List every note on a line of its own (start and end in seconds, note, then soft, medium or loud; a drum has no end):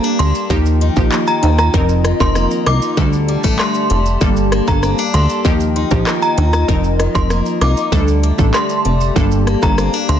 0.00 0.56 G2 medium
0.00 0.22 G3 medium
0.00 0.49 A#3 medium
0.00 1.12 A#3 medium
0.00 0.56 D4 medium
0.00 0.49 G4 medium
0.00 0.49 A5 medium
0.00 shaker medium
0.05 shaker medium
0.19 0.33 D2 loud
0.19 0.56 A4 medium
0.19 0.32 C6 medium
0.19 closed hi-hat medium
0.19 shaker soft
0.19 shaker medium
0.35 shaker medium
0.50 0.90 D#2 loud
0.50 1.80 D#3 medium
0.50 0.68 F3 loud
0.50 0.68 A#3 medium
0.50 0.68 D#4 medium
0.50 2.95 F4 medium
0.50 0.68 G4 loud
0.50 1.73 D#5 medium
0.50 1.73 G5 medium
0.50 kick medium
0.50 shaker medium
0.66 shaker medium
0.81 1.42 D#4 medium
0.81 closed hi-hat medium
0.81 shaker medium
0.96 1.10 A#1 medium
0.96 1.14 F3 medium
0.96 1.14 A#3 medium
0.96 1.14 D#4 medium
0.96 1.14 G4 medium
0.96 kick medium
0.96 high timbale medium
0.96 shaker medium
1.12 1.80 A#3 medium
1.12 clap loud
1.12 shaker medium
1.27 1.40 A#5 medium
1.27 shaker medium
1.43 1.70 D#2 loud
1.43 1.80 D#4 medium
1.43 closed hi-hat medium
1.43 high timbale medium
1.43 shaker medium
1.58 1.71 A#5 medium
1.58 cross-stick medium
1.58 shaker medium
1.74 2.14 F1 loud
1.74 3.04 F2 medium
1.74 2.16 F3 medium
1.74 2.17 C4 medium
1.74 2.17 D#4 medium
1.74 2.17 A#4 loud
1.74 2.96 D#5 medium
1.74 2.97 A#5 medium
1.74 kick loud
1.74 shaker medium
1.89 shaker soft
1.89 shaker medium
2.05 3.04 D#3 medium
2.05 cross-stick loud
2.05 closed hi-hat medium
2.05 shaker medium
2.20 2.47 F1 loud
2.20 2.38 F3 medium
2.20 2.38 C4 medium
2.20 2.38 D#4 medium
2.20 2.38 A#4 medium
2.20 2.33 C6 medium
2.20 kick loud
2.20 shaker medium
2.35 3.04 A#3 medium
2.35 cross-stick medium
2.35 shaker medium
2.51 shaker medium
2.66 2.80 C2 loud
2.66 3.04 D#4 medium
2.66 2.79 D6 medium
2.66 cross-stick loud
2.66 closed hi-hat medium
2.66 shaker soft
2.66 shaker medium
2.82 shaker medium
2.97 3.37 D2 loud
2.97 4.28 D3 medium
2.97 3.15 G3 loud
2.97 3.15 A3 medium
2.97 3.15 D4 medium
2.97 5.43 G4 medium
2.97 3.15 A4 loud
2.97 4.20 D5 medium
2.97 5.43 A5 medium
2.97 kick medium
2.97 shaker medium
3.13 shaker medium
3.28 3.44 G3 medium
3.28 closed hi-hat medium
3.28 shaker medium
3.44 3.57 A1 medium
3.44 3.61 G3 medium
3.44 3.89 A3 medium
3.44 3.61 A3 medium
3.44 3.62 D4 medium
3.44 3.62 A4 medium
3.44 kick medium
3.44 shaker medium
3.59 5.17 G3 medium
3.59 4.03 C6 medium
3.59 cross-stick loud
3.59 clap loud
3.59 shaker medium
3.74 shaker medium
3.90 4.17 F1 medium
3.90 4.27 A3 medium
3.90 closed hi-hat medium
3.90 shaker medium
4.06 shaker medium
4.21 4.61 G1 loud
4.21 5.51 G2 medium
4.21 4.64 G3 medium
4.21 5.44 A#3 medium
4.21 4.64 A#3 medium
4.21 4.64 D4 medium
4.21 4.64 A4 loud
4.21 kick loud
4.21 shaker medium
4.36 shaker soft
4.36 shaker medium
4.52 6.07 A#3 medium
4.52 cross-stick loud
4.52 closed hi-hat medium
4.52 shaker medium
4.68 4.94 G1 loud
4.68 4.85 G3 medium
4.68 4.85 A#3 medium
4.68 4.85 D4 medium
4.68 4.85 A4 medium
4.68 4.81 A#5 medium
4.68 kick loud
4.68 shaker medium
4.83 4.99 C4 medium
4.83 cross-stick medium
4.83 shaker medium
4.98 5.51 D4 medium
4.98 shaker medium
5.14 5.27 D2 medium
5.14 5.51 A4 medium
5.14 5.27 C6 medium
5.14 closed hi-hat medium
5.14 shaker soft
5.14 shaker medium
5.30 shaker medium
5.45 5.85 D#2 loud
5.45 6.75 D#3 medium
5.45 5.62 F3 medium
5.45 5.62 A#3 medium
5.45 5.62 D#4 medium
5.45 7.90 F4 medium
5.45 5.63 G4 loud
5.45 7.90 D#5 medium
5.45 6.67 G5 medium
5.45 kick medium
5.45 shaker medium
5.60 shaker medium
5.76 6.37 D#4 medium
5.76 closed hi-hat medium
5.76 shaker medium
5.91 6.05 A#1 medium
5.91 6.09 F3 medium
5.91 6.09 A#3 medium
5.91 6.09 D#4 medium
5.91 6.09 G4 medium
5.91 kick loud
5.91 high timbale medium
5.91 shaker medium
6.07 6.75 A#3 medium
6.07 cross-stick loud
6.07 clap loud
6.07 shaker medium
6.22 6.35 A#5 medium
6.22 shaker medium
6.38 6.64 D#2 loud
6.38 6.75 D#4 medium
6.38 closed hi-hat medium
6.38 high timbale medium
6.38 shaker medium
6.53 6.66 A#5 medium
6.53 cross-stick loud
6.53 shaker medium
6.68 7.09 F1 loud
6.68 7.99 F2 medium
6.68 7.11 F3 loud
6.68 7.11 C4 medium
6.68 7.11 D#4 medium
6.68 7.11 A#4 loud
6.68 7.91 A#5 medium
6.68 kick loud
6.68 shaker medium
6.84 shaker soft
6.84 shaker medium
7.00 7.99 D#3 medium
7.00 cross-stick loud
7.00 closed hi-hat medium
7.00 shaker medium
7.15 7.42 F1 medium
7.15 7.32 F3 medium
7.15 7.32 C4 medium
7.15 7.32 D#4 medium
7.15 7.33 A#4 medium
7.15 7.28 C6 medium
7.15 kick medium
7.15 shaker medium
7.30 7.99 A#3 medium
7.30 cross-stick loud
7.30 shaker medium
7.46 shaker medium
7.61 7.75 C2 loud
7.61 7.99 D#4 medium
7.61 7.74 D6 medium
7.61 cross-stick medium
7.61 closed hi-hat medium
7.61 shaker soft
7.61 shaker medium
7.77 shaker medium
7.92 8.32 D2 loud
7.92 9.22 D3 medium
7.92 8.10 G3 loud
7.92 8.10 A3 medium
7.92 8.10 D4 medium
7.92 10.20 G4 medium
7.92 8.10 A4 loud
7.92 9.15 D5 medium
7.92 10.20 A5 medium
7.92 kick medium
7.92 shaker medium
8.08 shaker medium
8.23 8.84 A3 medium
8.23 closed hi-hat medium
8.23 shaker medium
8.38 8.52 A1 medium
8.38 8.56 G3 medium
8.38 8.56 A3 medium
8.38 8.56 D4 medium
8.38 8.56 A4 medium
8.38 kick medium
8.38 shaker medium
8.54 10.12 G3 medium
8.54 8.98 C6 medium
8.54 cross-stick loud
8.54 clap loud
8.54 shaker medium
8.69 shaker medium
8.85 9.12 F1 medium
8.85 9.22 A3 medium
8.85 closed hi-hat medium
8.85 shaker medium
9.01 shaker medium
9.16 9.56 G1 loud
9.16 10.20 G2 medium
9.16 9.59 G3 medium
9.16 9.59 A#3 medium
9.16 10.20 A#3 medium
9.16 9.59 D4 medium
9.16 9.59 A4 loud
9.16 kick loud
9.16 shaker medium
9.31 shaker soft
9.31 shaker medium
9.47 10.20 A#3 medium
9.47 cross-stick loud
9.47 closed hi-hat medium
9.47 shaker medium
9.62 9.89 G1 loud
9.62 9.80 G3 medium
9.62 9.80 A#3 medium
9.62 9.80 D4 medium
9.62 9.80 A4 medium
9.62 9.75 A#5 medium
9.62 kick loud
9.62 shaker medium
9.78 9.94 C4 medium
9.78 cross-stick loud
9.78 shaker medium
9.93 10.20 D4 medium
9.93 shaker medium
10.09 10.20 D2 medium
10.09 10.20 A4 medium
10.09 10.20 C6 medium
10.09 closed hi-hat medium
10.09 shaker soft
10.09 shaker medium